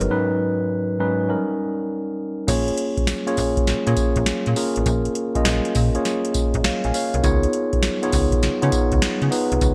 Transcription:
Already playing: tine electric piano F#3 B3 D#4 G#4 B4 C#5 D#5
0.00 fm bass G1, tine electric piano F#4 A#4, closed hi-hat
0.10 tine electric piano G#2 F#3 C#4 D#4 B4
0.99 tine electric piano G#2 F#3 C#4 D#4 B4
1.28 tine electric piano F#3 C#4 D#4 A#4
1.35 tine electric piano G3
2.47 fm bass A#1, tine electric piano A#3 C#4 F4 G#4 C#5, kick, closed hi-hat, crash, tambourine
2.68 closed hi-hat
2.77 closed hi-hat
2.97 fm bass A#1, kick, closed hi-hat
3.07 snare, closed hi-hat, tambourine
3.26 tine electric piano A#3 C#4 F4 G#4 C#5, closed hi-hat
3.37 fm bass A#1, kick, open hi-hat, tambourine
3.57 kick, closed hi-hat
3.67 fm bass A#2, snare, closed hi-hat, tambourine
3.86 fm bass A#2, tine electric piano A#3 C#4 F4 G#4 C#5, closed hi-hat
3.97 kick, closed hi-hat, tambourine
4.16 fm bass A#1, kick, closed hi-hat
4.26 snare, closed hi-hat, tambourine
4.46 fm bass A#2, closed hi-hat
4.56 tine electric piano A#3 C#4 F4 G#4 A#4, open hi-hat, tambourine
4.76 fm bass A1, closed hi-hat
4.86 fm bass A#1, kick, closed hi-hat, tambourine
5.05 closed hi-hat
5.15 closed hi-hat
5.35 fm bass A#1, tine electric piano A#3 C#4 F4 G#4 D#5, kick, closed hi-hat
5.45 fm bass A#1, snare, closed hi-hat, tambourine
5.65 closed hi-hat
5.75 fm bass A#2, kick, open hi-hat, tambourine
5.95 tine electric piano A#3 C#4 F4 G#4 C#5, closed hi-hat
6.05 snare, closed hi-hat, tambourine
6.25 closed hi-hat
6.34 fm bass A#1, kick, closed hi-hat, tambourine
6.54 fm bass A#1, kick, closed hi-hat
6.64 tine electric piano C#5 F5, snare, closed hi-hat, tambourine
6.84 fm bass A#1, tine electric piano F5 G#5, closed hi-hat
6.94 tine electric piano C#5 F5, open hi-hat, tambourine
7.14 fm bass C2, tine electric piano A#4 C#5, closed hi-hat
7.23 fm bass C#2, tine electric piano B3 D#4 F4 G#4 C#5, kick, closed hi-hat, tambourine
7.43 closed hi-hat
7.53 closed hi-hat
7.73 fm bass C#2, kick, closed hi-hat
7.83 snare, closed hi-hat, tambourine
8.02 tine electric piano B3 D#4 F4 G#4 C#5, closed hi-hat
8.12 fm bass C#2, kick, open hi-hat, tambourine
8.32 kick, closed hi-hat
8.43 fm bass C#3, snare, closed hi-hat, tambourine
8.62 fm bass C#3, tine electric piano B3 D#4 F4 G#4 C#5, closed hi-hat
8.72 kick, closed hi-hat, tambourine
8.92 fm bass C#2, kick, closed hi-hat
9.02 snare, closed hi-hat, tambourine
9.22 fm bass C#3, closed hi-hat
9.31 tine electric piano B3 D#4 F4 G#4 B4, open hi-hat, tambourine
9.52 fm bass C2, closed hi-hat
9.61 fm bass C#2, kick, closed hi-hat, tambourine

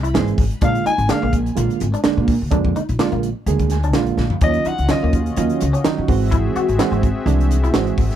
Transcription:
Already playing: upright bass C2
0.03 clean electric guitar E4, closed hi-hat
0.14 upright bass G#1, reed electric piano E3 G#3 C4 G#4, snare, closed hi-hat
0.28 closed hi-hat
0.38 upright bass G#1, kick, open hi-hat
0.51 closed hi-hat
0.61 upright bass A#1, reed electric piano D3 G#3 A#3 F4, clean electric guitar D4, soprano saxophone F5, kick, closed hi-hat
0.75 closed hi-hat
0.86 clean electric guitar D#4, soprano saxophone G#5, muted upright bass stroke, closed hi-hat
0.98 upright bass G#1, closed hi-hat
1.08 reed electric piano D3 G#3 A#3 G#4, clean electric guitar D4, soprano saxophone F5, muted upright bass stroke, snare, closed hi-hat
1.22 upright bass A#1, clean electric guitar A#3
1.33 kick, closed hi-hat
1.46 closed hi-hat
1.55 upright bass A#1, reed electric piano D3 G#3 A#3 F4, closed hi-hat
1.70 closed hi-hat
1.80 upright bass G#1, closed hi-hat
1.94 clean electric guitar D4, closed hi-hat
2.04 reed electric piano D3 G#3 A#3 D4, muted upright bass stroke, snare, closed hi-hat
2.18 upright bass A#2
2.28 kick, open hi-hat
2.42 upright bass D2
2.51 upright bass F2, reed electric piano D3 G#3 A#3 D4, clean electric guitar D4, kick, closed hi-hat
2.65 kick
2.76 clean electric guitar D#4, muted upright bass stroke, closed hi-hat
2.89 upright bass A#1, closed hi-hat
2.99 reed electric piano D3 G#3 A#3 F4, clean electric guitar D4, snare, closed hi-hat
3.12 upright bass A#1, clean electric guitar A#3, closed hi-hat
3.23 closed hi-hat
3.46 upright bass D2, reed electric piano D3 G#3 A#3 G#4, closed hi-hat
3.59 kick, closed hi-hat
3.70 reed electric piano G#5, snare, closed hi-hat
3.83 clean electric guitar D4, closed hi-hat
3.93 upright bass A#1, reed electric piano D3 G#3 A#3 F4 F5, snare, closed hi-hat
4.07 closed hi-hat
4.17 upright bass A#1, snare
4.30 floor tom
4.41 upright bass D#2, reed electric piano D#3 F#3 C#4 F4, clean electric guitar C#4, analog synth pad C#4 F4 F#4 D#5, soprano saxophone D#5, kick, closed hi-hat
4.54 closed hi-hat
4.65 clean electric guitar D#4, soprano saxophone F#5, muted upright bass stroke, closed hi-hat
4.78 upright bass C#2, closed hi-hat
4.89 reed electric piano D#3 F#3 C#4 F4, clean electric guitar C#4, soprano saxophone D#5, muted upright bass stroke, snare, closed hi-hat
5.03 upright bass D#2, clean electric guitar A#3
5.13 kick, closed hi-hat
5.26 closed hi-hat
5.37 upright bass D#2, reed electric piano D#3 F#3 C#4 F4, closed hi-hat
5.50 closed hi-hat
5.61 upright bass C#2, closed hi-hat
5.73 clean electric guitar C#4, closed hi-hat
5.84 reed electric piano D#3 F#3 C#4 D#4, muted upright bass stroke, snare, closed hi-hat
5.98 upright bass D#3
6.08 upright bass G#1, reed electric piano E3 G#3 C4 F#4, analog synth pad C4 G#4 E5, kick, open hi-hat
6.32 clean electric guitar E4, kick, closed hi-hat
6.56 clean electric guitar F#4, muted upright bass stroke, closed hi-hat
6.69 upright bass G#1, closed hi-hat
6.79 reed electric piano E3 G#3 C4 F#4, clean electric guitar E4, snare, closed hi-hat
6.92 upright bass G#1, clean electric guitar C4, closed hi-hat
7.03 kick, closed hi-hat
7.26 upright bass C2, reed electric piano E3 G#3 C4 D4, closed hi-hat
7.40 closed hi-hat
7.51 closed hi-hat
7.64 clean electric guitar E4, closed hi-hat
7.74 upright bass G#1, reed electric piano E3 G#3 C4 F#4, snare, closed hi-hat
7.87 closed hi-hat
7.98 upright bass G#1, kick, open hi-hat
8.11 snare, closed hi-hat

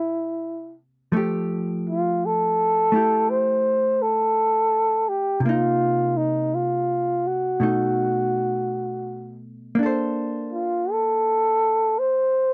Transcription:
Already playing: hollow-body jazz guitar C3 A#3 C#4 E4, flugelhorn E4
1.12 hollow-body jazz guitar F3 A3
1.16 hollow-body jazz guitar G4
1.89 flugelhorn F4
2.26 flugelhorn A4
2.92 hollow-body jazz guitar A3 E4 G4
3.30 flugelhorn C5
4.02 flugelhorn A4
5.09 flugelhorn G4
5.40 hollow-body jazz guitar C3, flugelhorn F4
5.46 hollow-body jazz guitar A#3 D#4
6.17 flugelhorn D#4
6.55 flugelhorn F4
7.27 flugelhorn F#4
7.60 hollow-body jazz guitar B2 A3 D#4
9.75 hollow-body jazz guitar A#3 D4
9.83 hollow-body jazz guitar A4 C5
10.53 flugelhorn F4
10.92 flugelhorn A4
11.99 flugelhorn C5

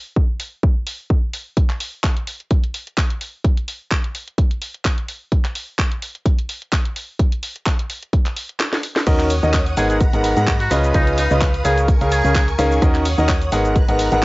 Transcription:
0.16 kick
0.40 open hi-hat
0.63 kick
0.87 open hi-hat
1.10 kick
1.34 open hi-hat
1.57 kick, closed hi-hat
1.70 clap, closed hi-hat
1.80 open hi-hat
2.04 kick, clap, closed hi-hat
2.17 closed hi-hat
2.27 open hi-hat
2.40 closed hi-hat
2.51 kick, closed hi-hat
2.64 closed hi-hat
2.74 open hi-hat
2.87 closed hi-hat
2.98 kick, clap, closed hi-hat
3.10 closed hi-hat
3.21 open hi-hat
3.44 kick, closed hi-hat
3.57 closed hi-hat
3.68 open hi-hat
3.91 kick, clap, closed hi-hat
4.04 closed hi-hat
4.15 open hi-hat
4.28 closed hi-hat
4.38 kick, closed hi-hat
4.51 closed hi-hat
4.62 open hi-hat
4.74 closed hi-hat
4.85 kick, clap, closed hi-hat
4.98 closed hi-hat
5.08 open hi-hat
5.32 kick, closed hi-hat
5.45 clap, closed hi-hat
5.55 open hi-hat
5.79 kick, clap, closed hi-hat
5.92 closed hi-hat
6.02 open hi-hat
6.15 closed hi-hat
6.26 kick, closed hi-hat
6.39 closed hi-hat
6.49 open hi-hat
6.62 closed hi-hat
6.73 kick, clap, closed hi-hat
6.85 closed hi-hat
6.96 open hi-hat
7.19 kick, closed hi-hat
7.32 closed hi-hat
7.43 open hi-hat
7.56 closed hi-hat
7.66 kick, clap, closed hi-hat
7.79 closed hi-hat
7.90 open hi-hat
8.03 closed hi-hat
8.13 kick, closed hi-hat
8.26 clap, closed hi-hat
8.37 open hi-hat
8.49 closed hi-hat
8.60 snare, clap, closed hi-hat
8.73 snare, closed hi-hat
8.83 open hi-hat
8.96 snare
9.07 fm bass D#2, grand piano D#3 C#4 F#4 A#4 D#5, string machine C#5 F#5 D#6, kick, cross-stick, closed hi-hat, crash, cabasa
9.20 clap, closed hi-hat, cabasa
9.30 open hi-hat, cabasa
9.43 fm bass D#2, grand piano D#3 C#4 F#4 A#4 D#5, cabasa
9.54 kick, clap, closed hi-hat, cabasa
9.66 closed hi-hat, cabasa
9.77 fm bass G#1, grand piano G#2 B3 G#4 A#4 F#5, muted trumpet G#4, string machine A#5 B5, open hi-hat, cabasa
9.90 muted trumpet G#4, closed hi-hat, cabasa
10.01 kick, closed hi-hat, cabasa
10.13 fm bass G#1, grand piano G#2 B3 G#4 A#4 F#5, closed hi-hat, cabasa
10.24 open hi-hat, cabasa
10.37 grand piano G#2 B3 G#4 A#4 F#5, fm bass G#2, closed hi-hat, cabasa
10.47 kick, clap, closed hi-hat, cabasa
10.60 muted trumpet F#4, closed hi-hat, cabasa
10.71 fm bass C#2, grand piano C#3 C#4 F4 B4 D#5, string machine B4 F5 D#6, cross-stick, open hi-hat, cabasa
10.84 cabasa
10.94 fm bass C#2, grand piano C#3 C#4 F4 B4 D#5, muted trumpet D#4, kick, cross-stick, closed hi-hat, cabasa
11.07 closed hi-hat, cabasa
11.18 muted trumpet D#4, open hi-hat, cabasa
11.31 fm bass C#2, grand piano C#3 C#4 F4 B4 D#5, cabasa
11.41 kick, clap, closed hi-hat, cabasa
11.54 closed hi-hat, cabasa
11.65 fm bass C#2, grand piano C#3 C#4 G#4 A#4 F5, muted trumpet G#4, string machine A#4 G#5 C#6, open hi-hat, cabasa
11.78 closed hi-hat, cabasa
11.88 kick, closed hi-hat, cabasa
12.01 fm bass C#2, grand piano C#3 C#4 G#4 A#4 F5, closed hi-hat, cabasa
12.12 muted trumpet G#4, open hi-hat, cabasa
12.24 fm bass C#2, grand piano C#3 C#4 G#4 A#4 F5, closed hi-hat, cabasa
12.35 kick, clap, closed hi-hat, cabasa
12.48 closed hi-hat, cabasa
12.58 fm bass C#2, grand piano D#3 C#4 G#4 A#4 F5, cross-stick, open hi-hat, cabasa
12.71 cabasa
12.82 fm bass D#2, grand piano D#3 C#4 F#4 A#4 D#5, string machine C#5 F#5 D#6, kick, cross-stick, closed hi-hat, cabasa
12.95 clap, closed hi-hat, cabasa
13.05 open hi-hat, cabasa
13.18 fm bass D#2, grand piano D#3 C#4 F#4 A#4 D#5, cabasa
13.29 kick, clap, closed hi-hat, cabasa
13.42 closed hi-hat, cabasa
13.52 fm bass G#1, grand piano G#2 B3 G#4 A#4 F#5, string machine B4 A#5 F#6, open hi-hat, cabasa
13.65 closed hi-hat, cabasa
13.76 kick, closed hi-hat, cabasa
13.89 fm bass G#1, grand piano G#2 B3 G#4 A#4 F#5, closed hi-hat, cabasa
13.99 open hi-hat, cabasa
14.12 fm bass G#1, grand piano G#2 B3 G#4 A#4 F#5, closed hi-hat, cabasa

